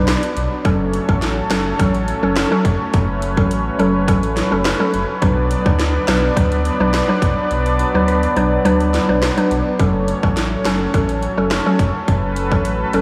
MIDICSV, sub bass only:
0, 0, Header, 1, 2, 480
1, 0, Start_track
1, 0, Tempo, 571429
1, 548, Time_signature, 4, 2, 24, 8
1, 10933, End_track
2, 0, Start_track
2, 0, Title_t, "Sub bass"
2, 0, Program_c, 0, 38
2, 0, Note_on_c, 0, 35, 85
2, 141, Note_off_c, 0, 35, 0
2, 307, Note_on_c, 0, 35, 95
2, 406, Note_off_c, 0, 35, 0
2, 546, Note_on_c, 0, 30, 105
2, 833, Note_off_c, 0, 30, 0
2, 914, Note_on_c, 0, 33, 85
2, 1189, Note_off_c, 0, 33, 0
2, 1268, Note_on_c, 0, 30, 90
2, 1455, Note_off_c, 0, 30, 0
2, 1508, Note_on_c, 0, 33, 99
2, 1794, Note_off_c, 0, 33, 0
2, 1874, Note_on_c, 0, 30, 90
2, 2062, Note_off_c, 0, 30, 0
2, 2225, Note_on_c, 0, 30, 95
2, 2325, Note_off_c, 0, 30, 0
2, 2468, Note_on_c, 0, 30, 111
2, 2834, Note_on_c, 0, 33, 85
2, 2847, Note_off_c, 0, 30, 0
2, 3110, Note_off_c, 0, 33, 0
2, 3187, Note_on_c, 0, 30, 91
2, 3429, Note_on_c, 0, 33, 90
2, 3441, Note_off_c, 0, 30, 0
2, 3714, Note_off_c, 0, 33, 0
2, 3795, Note_on_c, 0, 30, 87
2, 3982, Note_off_c, 0, 30, 0
2, 4148, Note_on_c, 0, 30, 98
2, 4247, Note_off_c, 0, 30, 0
2, 4387, Note_on_c, 0, 35, 104
2, 4673, Note_off_c, 0, 35, 0
2, 4754, Note_on_c, 0, 38, 92
2, 5029, Note_off_c, 0, 38, 0
2, 5108, Note_on_c, 0, 35, 102
2, 5295, Note_off_c, 0, 35, 0
2, 5348, Note_on_c, 0, 38, 93
2, 5634, Note_off_c, 0, 38, 0
2, 5714, Note_on_c, 0, 35, 84
2, 5901, Note_off_c, 0, 35, 0
2, 6066, Note_on_c, 0, 35, 90
2, 6166, Note_off_c, 0, 35, 0
2, 6307, Note_on_c, 0, 35, 104
2, 6593, Note_off_c, 0, 35, 0
2, 6673, Note_on_c, 0, 38, 84
2, 6949, Note_off_c, 0, 38, 0
2, 7026, Note_on_c, 0, 35, 92
2, 7214, Note_off_c, 0, 35, 0
2, 7266, Note_on_c, 0, 38, 94
2, 7553, Note_off_c, 0, 38, 0
2, 7635, Note_on_c, 0, 35, 77
2, 7822, Note_off_c, 0, 35, 0
2, 7988, Note_on_c, 0, 35, 94
2, 8087, Note_off_c, 0, 35, 0
2, 8228, Note_on_c, 0, 30, 110
2, 8514, Note_off_c, 0, 30, 0
2, 8595, Note_on_c, 0, 33, 83
2, 8870, Note_off_c, 0, 33, 0
2, 8949, Note_on_c, 0, 30, 90
2, 9135, Note_off_c, 0, 30, 0
2, 9190, Note_on_c, 0, 33, 97
2, 9475, Note_off_c, 0, 33, 0
2, 9556, Note_on_c, 0, 30, 87
2, 9743, Note_off_c, 0, 30, 0
2, 9906, Note_on_c, 0, 30, 92
2, 10005, Note_off_c, 0, 30, 0
2, 10147, Note_on_c, 0, 30, 111
2, 10513, Note_on_c, 0, 33, 86
2, 10525, Note_off_c, 0, 30, 0
2, 10788, Note_off_c, 0, 33, 0
2, 10866, Note_on_c, 0, 30, 95
2, 10933, Note_off_c, 0, 30, 0
2, 10933, End_track
0, 0, End_of_file